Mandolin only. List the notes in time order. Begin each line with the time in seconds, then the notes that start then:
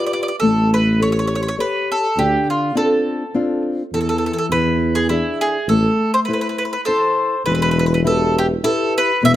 0.06 D5
0.13 D5
0.23 D5
0.28 D5
0.40 A4
0.74 B4
1.02 C#5
1.12 C#5
1.19 C#5
1.27 C#5
1.35 C#5
1.43 C#5
1.48 C#5
1.60 B4
1.92 A4
2.19 G4
2.50 F4
2.77 A4
3.94 A4
4.01 A4
4.09 A4
4.18 A4
4.26 A4
4.33 A4
4.38 A4
4.52 B4
4.95 G#4
5.09 E4
5.41 G#4
5.69 A4
6.14 C5
6.25 B4
6.33 B4
6.41 B4
6.49 B4
6.58 B4
6.65 B4
6.73 B4
6.85 A4 C5
7.46 B4
7.55 B4
7.62 B4
7.71 B4
7.79 B4
7.86 B4
7.94 B4
8.07 A4
8.38 G4
8.64 A4
8.98 B4
9.25 E5